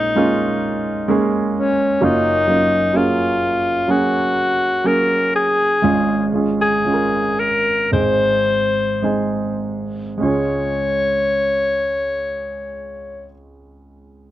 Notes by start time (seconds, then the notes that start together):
Already playing: A#1 A#2 G#3 A#3 C#4 D#4 F4
0.16 G#3 A#3 C#4 F4
1.08 G#3 A#3 C#4 G#4
1.58 C#4
2.01 F#1 F#2 F#3 A#3 C#4 D#4 F4
2.47 F#3 A#3 C#4 F4
2.93 F#3 A#3 C#4 F4 G#4
3.88 F#3 A#3 C#4 F#4 G#4
4.84 F#3 A#3 C#4 G#4 A#4
5.35 G#4
5.82 G#1 G#2 G#3 C#4 F4 G#4
6.33 G#3 C#4 F4 G#4
6.61 G#4
6.85 G#3 C#4 F4 G#4
6.93 A#4
7.39 A#4
7.92 G#1 G#2 G#3 C4 D#4 G#4 C5
9.02 G#3 C4 D#4 G#4
10.18 C#2 G#3 C#4
10.22 F4 G#4 C#5